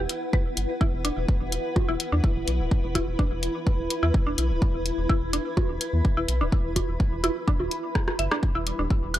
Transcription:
0.00 9.19 E4 medium
0.00 9.19 B4 medium
0.00 2.20 F#5 medium
0.09 closed hi-hat medium
0.33 0.38 B4 medium
0.33 kick loud
0.57 0.66 G1 medium
0.57 closed hi-hat medium
0.81 0.85 E4 loud
0.81 kick loud
0.93 1.11 E1 loud
1.05 1.07 D4 medium
1.05 closed hi-hat medium
1.17 1.25 E1 medium
1.28 kick loud
1.41 1.58 E1 medium
1.52 closed hi-hat medium
1.76 kick loud
1.76 low bongo medium
1.89 1.97 E1 medium
1.89 1.93 E4 loud
2.00 closed hi-hat medium
2.12 2.21 E2 medium
2.12 2.15 D4 medium
2.18 9.19 B5 medium
2.24 kick loud
2.36 2.45 E1 medium
2.47 2.61 B1 medium
2.47 closed hi-hat medium
2.60 2.68 D1 medium
2.71 kick loud
2.84 3.01 E1 loud
2.95 3.00 E4 loud
2.95 kick medium
2.95 closed hi-hat medium
2.95 low bongo soft
3.08 3.16 E1 medium
3.19 3.22 D4 medium
3.19 kick loud
3.31 3.49 E1 medium
3.43 closed hi-hat medium
3.67 kick loud
3.79 3.87 E1 medium
3.90 closed hi-hat medium
4.03 4.11 E2 medium
4.03 4.07 E4 loud
4.14 kick loud
4.27 4.35 E1 medium
4.27 4.29 D4 medium
4.38 4.52 B1 medium
4.38 closed hi-hat medium
4.50 4.59 D1 loud
4.62 kick loud
4.74 4.92 E1 medium
4.86 closed hi-hat medium
4.98 5.06 E1 medium
5.09 5.14 E4 loud
5.09 kick loud
5.22 5.39 E1 medium
5.33 5.36 D4 medium
5.33 closed hi-hat medium
5.57 kick loud
5.57 low bongo medium
5.69 5.78 E1 loud
5.81 closed hi-hat medium
5.93 6.02 E2 medium
6.05 kick loud
6.17 6.26 E1 medium
6.17 6.21 E4 medium
6.28 6.42 B1 medium
6.28 closed hi-hat medium
6.41 6.49 D1 loud
6.41 6.44 D4 medium
6.52 kick loud
6.65 6.82 E1 loud
6.76 kick medium
6.76 closed hi-hat medium
6.76 low bongo soft
6.89 6.97 E1 medium
7.00 kick loud
7.12 7.30 E1 loud
7.24 7.28 E4 loud
7.24 closed hi-hat medium
7.24 low bongo medium
7.48 7.50 D4 medium
7.48 kick loud
7.60 7.68 E1 medium
7.60 low bongo soft
7.71 closed hi-hat medium
7.95 kick loud
7.95 cross-stick medium
8.08 cross-stick medium
8.08 low bongo medium
8.19 8.28 G1 medium
8.19 8.24 E5 medium
8.19 closed hi-hat medium
8.31 8.38 D4 loud
8.31 cross-stick medium
8.43 9.19 G3 medium
8.43 9.19 G4 medium
8.43 kick loud
8.55 8.73 E1 loud
8.55 8.59 E4 loud
8.67 closed hi-hat medium
8.79 8.87 E1 medium
8.79 8.82 D4 medium
8.90 kick loud
9.03 9.19 E1 medium
9.14 closed hi-hat medium
9.14 high woodblock medium

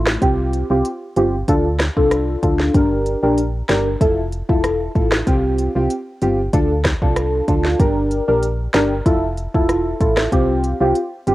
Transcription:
0.00 0.17 A1 medium
0.00 0.19 A3 medium
0.00 0.20 E4 medium
0.00 0.20 F4 medium
0.06 cross-stick loud
0.06 snare loud
0.22 0.63 C2 loud
0.22 0.66 C4 medium
0.22 0.66 F4 medium
0.22 0.67 G4 loud
0.22 kick loud
0.22 closed hi-hat medium
0.53 closed hi-hat medium
0.70 0.83 C2 loud
0.70 0.88 C4 medium
0.70 0.88 F4 medium
0.70 0.88 G4 medium
0.85 closed hi-hat medium
1.16 1.44 G1 loud
1.16 1.36 C4 medium
1.16 1.36 F4 medium
1.16 1.36 G4 medium
1.16 closed hi-hat soft
1.48 1.90 D2 loud
1.48 1.68 D4 loud
1.48 1.68 F4 medium
1.48 1.68 A4 loud
1.48 kick loud
1.48 closed hi-hat medium
1.79 cross-stick medium
1.79 snare loud
1.79 closed hi-hat soft
1.97 2.36 C2 medium
1.97 2.39 D4 medium
1.97 2.39 F4 medium
1.97 2.40 A4 medium
1.97 kick loud
2.11 cross-stick medium
2.11 closed hi-hat medium
2.43 2.70 D2 loud
2.43 2.72 D4 medium
2.43 2.72 F4 medium
2.43 2.72 A4 medium
2.43 kick loud
2.43 closed hi-hat soft
2.60 snare medium
2.74 3.16 G1 loud
2.74 3.19 D4 medium
2.74 3.19 G4 medium
2.74 3.19 A#4 loud
2.74 kick loud
2.74 closed hi-hat medium
3.06 closed hi-hat medium
3.23 3.63 A#1 medium
3.23 3.41 D4 medium
3.23 3.41 G4 medium
3.23 3.41 A#4 medium
3.38 closed hi-hat medium
3.69 3.96 G1 loud
3.69 3.89 D4 medium
3.69 3.89 G4 medium
3.69 3.89 A#4 medium
3.69 cross-stick medium
3.69 snare loud
3.69 closed hi-hat soft
4.01 4.42 F1 loud
4.01 4.20 E4 loud
4.01 4.20 F4 medium
4.01 4.21 A4 loud
4.01 kick loud
4.01 closed hi-hat medium
4.32 closed hi-hat medium
4.49 4.89 E1 medium
4.49 4.92 E4 medium
4.49 4.92 F4 medium
4.49 4.92 A4 medium
4.49 kick medium
4.64 cross-stick loud
4.64 closed hi-hat medium
4.95 5.23 A1 medium
4.95 5.24 E4 medium
4.95 5.25 F4 medium
4.95 5.25 A4 medium
4.95 kick loud
4.95 closed hi-hat soft
5.11 cross-stick loud
5.11 snare loud
5.27 5.69 C2 loud
5.27 5.71 C4 loud
5.27 5.71 F4 medium
5.27 5.72 G4 loud
5.27 kick loud
5.27 closed hi-hat medium
5.58 closed hi-hat medium
5.75 5.88 C2 loud
5.75 5.93 C4 medium
5.75 5.93 F4 medium
5.75 5.94 G4 medium
5.90 closed hi-hat medium
6.21 6.49 G1 loud
6.21 6.41 C4 medium
6.21 6.41 F4 medium
6.21 6.42 G4 medium
6.21 closed hi-hat medium
6.53 6.95 D2 loud
6.53 6.73 D4 loud
6.53 6.73 F4 medium
6.53 6.73 A4 loud
6.53 kick loud
6.53 closed hi-hat medium
6.84 kick medium
6.84 cross-stick medium
6.84 snare loud
6.84 closed hi-hat soft
7.02 7.42 C2 medium
7.02 7.45 D4 medium
7.02 7.45 F4 medium
7.02 7.45 A4 medium
7.02 kick medium
7.16 cross-stick loud
7.16 closed hi-hat medium
7.48 7.75 D2 loud
7.48 7.77 D4 medium
7.48 7.77 F4 medium
7.48 7.77 A4 medium
7.48 kick loud
7.48 closed hi-hat soft
7.65 snare medium
7.79 8.21 G1 loud
7.79 8.24 D4 medium
7.79 8.24 G4 medium
7.79 8.24 A#4 loud
7.79 kick loud
7.79 closed hi-hat medium
8.11 closed hi-hat medium
8.28 8.68 A#1 loud
8.28 8.46 D4 medium
8.28 8.46 G4 medium
8.28 8.46 A#4 medium
8.43 closed hi-hat medium
8.74 9.02 G1 loud
8.74 8.94 D4 medium
8.74 8.94 G4 medium
8.74 8.94 A#4 medium
8.74 cross-stick medium
8.74 snare loud
8.74 closed hi-hat medium
9.06 9.47 F1 loud
9.06 9.25 E4 loud
9.06 9.26 F4 medium
9.06 9.26 A4 loud
9.06 kick loud
9.06 closed hi-hat medium
9.37 closed hi-hat medium
9.54 9.94 E1 medium
9.54 9.97 E4 medium
9.54 9.97 F4 medium
9.54 9.97 A4 medium
9.54 kick loud
9.69 cross-stick medium
9.69 closed hi-hat medium
10.01 10.28 A1 medium
10.01 10.30 E4 medium
10.01 10.30 F4 medium
10.01 10.30 A4 medium
10.01 kick loud
10.01 closed hi-hat soft
10.17 cross-stick loud
10.17 snare loud
10.32 10.74 C2 loud
10.32 10.77 C4 medium
10.32 10.77 F4 medium
10.32 10.77 G4 loud
10.32 kick loud
10.32 closed hi-hat medium
10.64 closed hi-hat medium
10.81 10.93 C2 loud
10.81 10.99 C4 medium
10.81 10.99 F4 medium
10.81 10.99 G4 medium
10.95 closed hi-hat medium
11.27 11.35 G1 loud
11.27 11.35 C4 medium
11.27 11.35 F4 medium
11.27 11.35 G4 medium
11.27 closed hi-hat medium

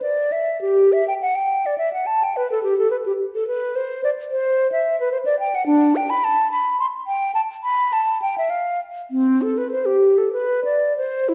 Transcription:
0.02 0.34 D5 medium
0.32 0.61 E5 medium
0.61 0.94 G4 medium
0.92 1.07 E5 medium
1.08 1.14 G5 medium
1.22 1.37 F#5 medium
1.35 1.67 G5 medium
1.66 1.77 D5 medium
1.78 1.92 E5 medium
1.93 2.08 F#5 medium
2.06 2.25 A5 medium
2.24 2.38 G5 medium
2.37 2.50 B4 medium
2.52 2.63 A4 medium
2.63 2.77 G4 medium
2.78 2.90 A4 medium
2.91 2.97 B4 medium
3.06 3.12 G4 medium
3.35 3.47 A4 medium
3.47 3.77 B4 medium
3.76 4.03 C5 medium
4.04 4.10 D5 medium
4.31 4.71 C5 medium
4.72 4.98 E5 medium
5.00 5.11 B4 medium
5.12 5.18 C5 medium
5.25 5.39 D5 medium
5.40 5.56 G5 medium
5.55 5.66 F#5 medium
5.66 5.97 D4 medium
5.96 6.11 G5 medium
6.10 6.26 B5 medium
6.24 6.51 A5 medium
6.51 6.79 B5 medium
6.80 6.86 C6 medium
7.07 7.34 G5 medium
7.35 7.41 A5 medium
7.63 7.94 B5 medium
7.93 8.21 A5 medium
8.22 8.36 G5 medium
8.38 8.51 E5 medium
8.50 8.80 F5 medium
9.11 9.43 C4 medium
9.42 9.59 A4 medium
9.58 9.71 B4 medium
9.71 9.87 C5 medium
9.86 10.19 G4 medium
10.18 10.32 A4 medium
10.33 10.64 B4 medium
10.65 10.96 D5 medium
10.97 11.30 C5 medium
11.29 11.34 E4 medium

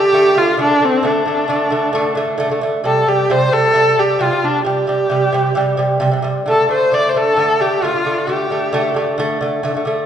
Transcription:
0.00 0.40 G4 loud
0.12 0.31 D3 medium
0.12 0.32 A3 loud
0.35 0.53 D3 medium
0.35 0.54 A3 medium
0.35 0.59 F4 loud
0.57 0.67 D3 medium
0.57 0.68 A3 loud
0.62 0.86 D4 medium
0.69 0.78 D3 medium
0.69 0.79 A3 medium
0.80 0.99 D3 medium
0.80 0.99 A3 medium
0.85 1.08 C4 medium
1.03 1.21 D3 loud
1.03 1.22 A3 loud
1.03 2.41 D4 medium
1.26 1.44 D3 medium
1.26 1.45 A3 medium
1.48 1.66 D3 medium
1.48 1.67 A3 loud
1.70 1.89 D3 medium
1.70 1.90 A3 medium
1.93 2.12 D3 loud
1.93 2.13 A3 loud
2.15 2.34 D3 medium
2.15 2.35 A3 loud
2.38 2.48 D3 loud
2.38 2.49 A3 loud
2.50 2.59 D3 medium
2.50 2.60 A3 medium
2.61 2.80 D3 medium
2.61 2.81 A3 medium
2.84 3.02 C3 medium
2.84 3.03 G3 loud
2.84 3.10 A4 medium
3.06 3.25 C3 medium
3.06 3.26 G3 medium
3.06 3.33 G4 medium
3.30 3.48 C3 loud
3.30 3.49 G3 loud
3.30 3.55 C5 loud
3.52 3.70 C3 medium
3.52 3.71 G3 medium
3.52 4.01 A4 loud
3.74 3.93 C3 medium
3.74 3.94 G3 loud
3.97 4.15 C3 medium
3.97 4.16 G3 medium
3.97 4.24 G4 medium
4.19 4.29 C3 medium
4.19 4.30 G3 loud
4.19 4.46 F4 medium
4.31 4.40 C3 medium
4.31 4.41 G3 medium
4.42 4.61 C3 medium
4.42 4.62 G3 medium
4.42 4.65 D4 medium
4.65 4.83 C3 medium
4.65 4.84 G3 loud
4.65 5.98 G4 medium
4.87 5.06 C3 medium
4.87 5.07 G3 medium
5.10 5.28 C3 medium
5.10 5.29 G3 loud
5.33 5.51 C3 medium
5.33 5.52 G3 loud
5.55 5.74 C3 loud
5.55 5.75 G3 loud
5.77 5.96 C3 medium
5.77 5.97 G3 loud
6.00 6.10 C3 loud
6.00 6.11 G3 loud
6.11 6.21 C3 medium
6.11 6.22 G3 medium
6.22 6.41 C3 medium
6.22 6.42 G3 loud
6.46 6.64 D3 medium
6.46 6.65 A3 medium
6.46 6.69 A4 medium
6.69 6.87 D3 medium
6.69 6.88 A3 medium
6.69 6.96 C5 medium
6.92 7.10 D3 medium
6.92 7.11 A3 loud
6.92 7.11 D5 medium
7.09 7.19 C5 medium
7.15 7.33 D3 medium
7.15 7.34 A3 medium
7.15 7.62 A4 loud
7.37 7.55 D3 loud
7.37 7.56 A3 loud
7.59 7.78 D3 medium
7.59 7.79 A3 medium
7.59 7.85 G4 medium
7.82 7.92 D3 medium
7.82 7.93 A3 loud
7.82 8.20 F4 medium
7.94 8.03 D3 medium
7.94 8.04 A3 medium
8.05 8.23 D3 medium
8.05 8.24 A3 medium
8.19 9.09 G4 medium
8.27 8.46 D3 medium
8.27 8.47 A3 loud
8.50 8.69 D3 medium
8.50 8.69 A3 medium
8.73 8.91 D3 loud
8.73 8.92 A3 loud
8.94 9.13 D3 medium
8.94 9.14 A3 loud
9.18 9.36 D3 loud
9.18 9.37 A3 loud
9.41 9.59 D3 medium
9.41 9.60 A3 loud
9.63 9.73 D3 loud
9.63 9.74 A3 loud
9.75 9.84 D3 medium
9.75 9.85 A3 medium
9.85 10.04 D3 medium
9.85 10.05 A3 loud

